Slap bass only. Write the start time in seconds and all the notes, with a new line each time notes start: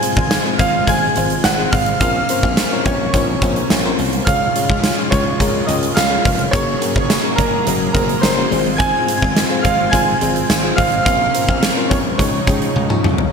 0.17 G#1
0.60 G#1
0.88 G#1
1.17 G#1
1.45 G#1
1.73 G#1
2.01 A#1
2.43 A#1
2.86 A#1
3.14 A#1
3.42 A#1
3.71 A#1
3.99 C2
4.27 C#2
4.70 C#2
5.12 C#2
5.40 C#2
5.68 C#2
5.97 C#2
6.25 F1
6.54 F#1
6.96 F#1
7.38 F#1
7.67 F#1
7.95 F#1
8.23 F#1
8.52 G#1
9.22 G#1
9.65 G#1
9.93 G#1
10.22 G#1
10.50 G#1
10.78 G#1
11.06 A#1
11.49 A#1
11.91 A#1
12.19 C#2
12.48 C#2
12.76 C#2
13.05 C2